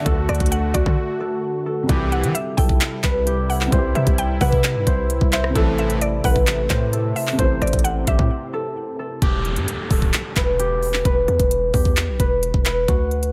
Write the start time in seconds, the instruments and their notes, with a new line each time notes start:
Already playing: analog synth pad D3 A3 F#4, felt piano A3 F#4, harp F#4
0.00 felt piano D3
0.06 808-style bass D2, felt piano A3, harp A4, kick, closed hi-hat
0.11 felt piano F#4
0.29 808-style bass D2, synth pluck D5, cross-stick, closed hi-hat
0.35 closed hi-hat
0.40 808-style bass D2, kick, closed hi-hat
0.46 closed hi-hat
0.52 synth pluck F#5, closed hi-hat
0.74 808-style bass D2, harp F#4, synth pluck D5, kick, closed hi-hat
0.86 808-style bass D3, kick
1.20 harp A4
1.66 harp A4
1.83 felt piano C3 G3
1.89 analog polysynth C2 G2 E3, 808-style bass C2, analog synth pad C3 G3 E4, felt piano E4, harp G4, kick, closed hi-hat
1.95 felt piano G4
2.12 synth pluck F#5, closed hi-hat
2.23 808-style bass E3, closed hi-hat
2.35 synth pluck E5, closed hi-hat
2.57 808-style bass B1, harp A4, synth pluck G5, kick, open hi-hat
2.69 kick
2.81 clap, closed hi-hat
3.04 808-style bass C2, harp B4, kick, clap, closed hi-hat
3.26 harp G4, closed hi-hat
3.50 synth pluck F#5, open hi-hat
3.61 clap
3.67 felt piano C3 G3
3.72 808-style bass C2, felt piano E4, harp C5, kick, closed hi-hat
3.79 felt piano G4
3.95 808-style bass C3, synth pluck E5, closed hi-hat
4.07 808-style bass C2, kick, closed hi-hat
4.18 synth pluck G5, closed hi-hat
4.41 808-style bass C3, harp B4, synth pluck F#5, kick, open hi-hat
4.53 kick
4.64 clap, closed hi-hat
4.75 808-style bass G2
4.87 808-style bass C2, harp C5, kick, closed hi-hat
5.10 closed hi-hat
5.21 808-style bass C2, kick
5.33 harp C5, synth pluck E5, clap, closed hi-hat
5.44 cross-stick
5.50 felt piano C3 A3
5.55 808-style bass A1, analog polysynth C2 A2 E3, analog synth pad C3 A3, felt piano E4, harp A4, kick, closed hi-hat
5.61 felt piano A4
5.78 synth pluck E5, closed hi-hat
5.90 closed hi-hat
6.01 synth pluck D5, closed hi-hat
6.24 808-style bass A1, harp B4, synth pluck F#5, kick, open hi-hat
6.36 808-style bass A1, kick
6.47 clap, closed hi-hat
6.70 808-style bass A2, harp C5, kick, clap, closed hi-hat
6.93 harp A4, closed hi-hat
7.16 synth pluck E5, open hi-hat
7.27 clap
7.33 felt piano C3 A3
7.39 808-style bass A1, analog synth pad C4, felt piano E4, harp C5, kick, closed hi-hat
7.44 felt piano C5
7.62 808-style bass A1, synth pluck D5, cross-stick, closed hi-hat
7.67 closed hi-hat
7.73 808-style bass A1, kick, closed hi-hat
7.79 closed hi-hat
7.84 synth pluck F#5, closed hi-hat
8.07 808-style bass A1, harp G4, synth pluck E5, kick, closed hi-hat
8.19 808-style bass A2, kick
8.53 harp A4
8.99 harp A4
9.22 808-style bass E1, harp G4, kick, closed hi-hat, downlifter
9.45 closed hi-hat
9.56 808-style bass G2, closed hi-hat
9.68 closed hi-hat
9.90 808-style bass D1, harp A4, kick, open hi-hat
10.02 kick
10.14 clap, closed hi-hat
10.36 808-style bass E1, harp B4, kick, clap, closed hi-hat
10.59 harp G4, closed hi-hat
10.83 open hi-hat
10.94 clap
11.05 808-style bass E1, harp B4, kick, closed hi-hat
11.28 808-style bass E2, closed hi-hat
11.40 808-style bass E1, kick, closed hi-hat
11.51 closed hi-hat
11.74 808-style bass E2, harp G4, kick, open hi-hat
11.85 kick
11.97 clap, closed hi-hat
12.08 808-style bass B1
12.20 808-style bass E1, harp B4, kick, closed hi-hat
12.43 closed hi-hat
12.54 808-style bass E1, kick
12.65 harp B4, clap, closed hi-hat
12.88 808-style bass D2, harp F#4, kick, closed hi-hat
13.11 closed hi-hat
13.23 closed hi-hat